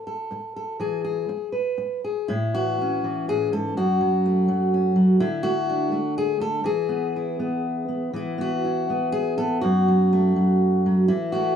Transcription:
0.07 0.55 A4 soft
0.31 muted steel-string acoustic guitar stroke medium
0.56 0.77 A4 soft
0.80 1.28 E3 medium
0.80 1.03 G#4 medium
1.04 1.52 G#4 soft
1.29 muted steel-string acoustic guitar stroke medium
1.52 2.03 B4 soft
1.78 muted steel-string acoustic guitar stroke soft
2.04 2.26 G#4 soft
2.28 3.27 A2 medium
2.28 3.03 E4 medium
2.54 3.03 E3 medium
2.54 3.28 F#4 medium
2.81 3.75 C#4 soft
3.04 3.77 E3 medium
3.28 3.52 A2 medium
3.28 3.53 G#4 medium
3.52 3.76 G#2 soft
3.52 3.77 A4 medium
3.77 5.21 F#2 medium
3.77 5.21 F#4 medium
4.01 4.47 F#3 medium
4.26 5.42 A3 soft
4.48 4.95 F#3 medium
4.74 5.20 C#4 soft
4.96 5.17 F#3 medium
5.20 6.62 D3 medium
5.20 5.92 E4 medium
5.43 5.91 A3 medium
5.43 6.16 F#4 medium
5.70 6.63 D4 soft
5.92 6.39 A3 medium
6.18 6.41 G#4 medium
6.40 6.62 A3 medium
6.40 6.65 A4 loud
6.64 8.12 E3 medium
6.64 8.16 G#4 medium
6.89 7.39 B3 medium
7.16 8.13 E4 soft
7.39 7.87 B3 medium
7.88 8.12 B3 soft
8.13 9.64 E3 medium
8.13 8.37 B3 soft
8.13 8.63 E4 medium
8.38 8.89 B3 medium
8.38 9.12 F#4 medium
8.65 9.61 E4 soft
8.90 9.38 B3 medium
9.12 9.37 G#4 medium
9.38 9.61 B3 medium
9.38 9.61 A4 medium
9.61 11.09 F#2 medium
9.61 11.08 F#4 medium
9.88 10.35 F#3 medium
10.13 11.34 A3 soft
10.36 10.85 F#3 medium
10.86 11.07 F#3 medium
11.08 11.56 E3 medium
11.08 11.56 E4 medium
11.32 11.56 A3 medium
11.32 11.56 F#4 medium

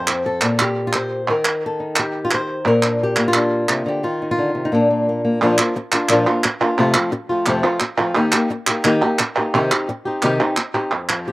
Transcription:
0.00 0.42 F2 medium
0.00 0.26 C5 medium
0.07 1.27 C4 soft
0.07 clap medium
0.26 0.86 A4 medium
0.41 1.28 A#2 medium
0.41 clap medium
0.59 1.21 G4 loud
0.59 clap medium
0.87 0.95 F4 medium
0.93 1.29 C5 medium
0.93 clap medium
1.28 2.66 D#3 medium
1.28 1.64 A#4 medium
1.45 clap medium
1.66 1.99 A4 medium
1.80 2.64 D#4 medium
1.96 2.58 G4 medium
1.96 clap medium
2.25 2.32 F4 medium
2.31 2.67 C5 medium
2.31 clap medium
2.65 3.69 A#2 medium
2.65 3.01 A#4 loud
2.83 3.35 D4 soft
2.83 clap medium
3.03 3.62 G4 medium
3.16 4.03 A#3 medium
3.16 clap medium
3.28 4.03 F4 medium
3.33 4.02 D4 soft
3.33 clap medium
3.69 3.85 C3 medium
3.69 clap medium
3.86 4.03 D3 medium
3.86 4.04 G4 medium
4.03 4.72 D#3 medium
4.03 4.29 F4 medium
4.22 4.64 D#4 soft
4.31 4.73 F4 loud
4.38 4.54 D3 medium
4.55 4.72 C3 medium
4.65 4.73 D#4 medium
4.72 5.40 A#2 medium
4.72 4.89 A#3 soft
4.72 5.42 D4 medium
4.91 5.07 A#3 soft
5.09 5.23 A#3 soft
5.25 5.39 A#3 medium
5.42 5.58 A#2 medium
5.42 5.58 F3 medium
5.42 5.58 A#3 medium
5.42 5.58 D4 medium
5.42 5.57 F4 medium
5.58 5.75 A#3 soft
5.58 5.75 D4 medium
5.58 5.74 F4 medium
5.58 clap medium
5.76 muted nylon-string guitar stroke medium
5.92 6.09 A#3 soft
5.92 6.10 D4 medium
5.92 6.09 F4 medium
5.92 clap medium
6.09 6.26 A#2 medium
6.09 6.26 F3 medium
6.09 6.26 A#3 medium
6.09 6.27 D4 medium
6.09 6.26 F4 medium
6.09 clap medium
6.27 6.44 A#3 soft
6.27 6.44 D4 soft
6.27 6.43 F4 medium
6.27 clap medium
6.44 muted nylon-string guitar stroke medium
6.44 clap medium
6.61 6.79 A#3 soft
6.61 6.78 D4 medium
6.61 6.77 F4 medium
6.61 clap soft
6.78 6.95 F2 medium
6.78 6.95 C3 medium
6.78 6.95 F3 medium
6.78 6.95 A3 medium
6.78 6.94 C4 medium
6.78 6.93 F4 medium
6.94 7.11 F3 medium
6.94 7.11 A3 soft
6.94 7.12 C4 medium
6.94 7.11 F4 medium
6.94 clap medium
7.12 muted nylon-string guitar stroke medium
7.29 7.46 F3 medium
7.29 7.47 A3 medium
7.29 7.47 C4 soft
7.29 7.46 F4 medium
7.46 7.63 F2 medium
7.46 7.64 C3 medium
7.46 7.64 F3 medium
7.46 7.64 A3 medium
7.46 7.63 C4 loud
7.46 7.62 F4 medium
7.46 clap medium
7.63 7.80 F3 soft
7.63 7.80 A3 medium
7.63 7.80 C4 medium
7.63 7.80 F4 medium
7.63 clap medium
7.80 muted nylon-string guitar stroke medium
7.80 clap medium
7.98 8.15 F3 soft
7.98 8.15 A3 medium
7.98 8.15 C4 medium
7.98 8.15 F4 medium
7.98 clap medium
8.15 8.32 D#3 medium
8.15 8.32 A#3 medium
8.15 8.33 D#4 medium
8.15 8.32 G4 medium
8.32 8.50 A#3 soft
8.32 8.50 D#4 medium
8.32 8.50 G4 medium
8.32 clap loud
8.50 muted nylon-string guitar stroke medium
8.67 8.84 A#3 medium
8.67 8.85 D#4 medium
8.67 8.84 G4 medium
8.67 clap medium
8.84 9.01 D#3 loud
8.84 9.02 A#3 medium
8.84 9.02 D#4 medium
8.84 9.01 G4 medium
8.84 clap medium
9.02 9.19 A#3 soft
9.02 9.19 D#4 medium
9.02 9.19 G4 medium
9.02 clap medium
9.19 muted nylon-string guitar stroke medium
9.19 clap medium
9.36 9.54 A#3 soft
9.36 9.54 D#4 medium
9.36 9.53 G4 medium
9.36 clap soft
9.54 9.70 C3 medium
9.54 9.71 D#3 medium
9.54 9.71 C4 medium
9.54 9.71 D#4 loud
9.54 9.70 G4 medium
9.71 9.88 C4 soft
9.71 9.88 D#4 medium
9.71 9.88 G4 medium
9.71 clap medium
9.89 muted nylon-string guitar stroke medium
10.05 10.23 C4 soft
10.05 10.23 D#4 medium
10.05 10.22 G4 soft
10.22 10.40 C3 medium
10.22 10.40 D#3 medium
10.22 10.40 C4 medium
10.22 10.40 D#4 medium
10.22 10.38 G4 medium
10.22 clap medium
10.40 10.57 C4 soft
10.40 10.57 D#4 medium
10.40 10.57 G4 medium
10.40 clap medium
10.57 muted nylon-string guitar stroke medium
10.57 clap medium
10.74 10.92 C4 soft
10.74 10.91 D#4 soft
10.74 10.91 G4 medium
10.74 clap soft
10.92 11.32 F2 medium
11.09 11.32 F3 medium
11.09 clap medium
11.28 11.32 G4 medium

